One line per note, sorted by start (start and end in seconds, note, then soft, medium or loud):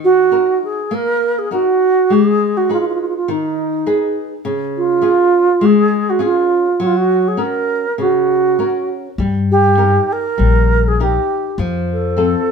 0.00 0.29 D#3 medium
0.04 0.59 F#4 loud
0.31 0.79 D#4 soft
0.31 0.80 F#4 soft
0.31 0.80 A#4 soft
0.64 0.96 G#4 medium
0.91 1.49 A#3 medium
0.91 1.40 A#4 medium
1.39 1.52 G#4 medium
1.51 1.99 D#4 soft
1.51 1.99 F#4 soft
1.51 2.14 F#4 medium
1.51 1.99 A#4 medium
2.10 2.68 G#3 medium
2.10 2.59 G#4 medium
2.57 2.71 F#4 medium
2.69 3.16 D#4 soft
2.69 2.78 F4 medium
2.69 3.17 G#4 soft
2.69 3.17 B4 soft
2.80 2.85 F4 medium
2.88 2.93 F4 medium
2.94 3.00 F4 medium
3.01 3.07 F4 medium
3.08 3.14 F4 medium
3.16 3.32 F4 medium
3.28 3.85 D#3 medium
3.28 4.17 D#4 medium
3.86 4.33 D#4 medium
3.86 4.33 G#4 soft
3.86 4.33 B4 medium
4.45 5.01 C#3 medium
4.77 5.67 F4 medium
5.01 5.49 C#4 soft
5.01 5.49 F4 soft
5.01 5.49 G#4 medium
5.61 6.18 G#3 medium
5.66 6.11 G#4 loud
6.10 6.22 F#4 medium
6.19 6.66 C#4 soft
6.19 6.66 F4 soft
6.19 6.67 G#4 medium
6.24 6.84 F4 medium
6.80 7.36 F#3 medium
6.80 6.87 F#4 medium
6.86 6.98 F4 medium
6.97 7.30 F#4 medium
7.28 7.44 G#4 medium
7.37 7.85 C#4 soft
7.37 7.85 F#4 soft
7.37 7.85 A#4 soft
7.42 8.03 A#4 loud
7.98 8.56 C#3 medium
7.98 8.90 F#4 medium
8.59 9.07 C#4 soft
8.59 9.07 F#4 soft
8.59 9.07 A#4 soft
9.18 9.97 G2 medium
9.18 9.77 G3 medium
9.51 10.14 G4 medium
9.78 10.26 D#4 soft
9.78 10.27 G4 soft
9.78 10.27 A#4 soft
10.13 10.89 A#4 loud
10.38 11.17 A#1 medium
10.38 10.97 G3 medium
10.88 11.04 G#4 medium
11.00 11.47 D#4 soft
11.00 11.47 G4 soft
11.00 11.60 G4 medium
11.00 11.47 A#4 soft
11.58 12.34 F2 medium
11.58 12.15 F3 medium
11.92 12.52 A4 medium
12.17 12.52 C4 soft
12.17 12.52 F4 soft
12.17 12.52 A4 soft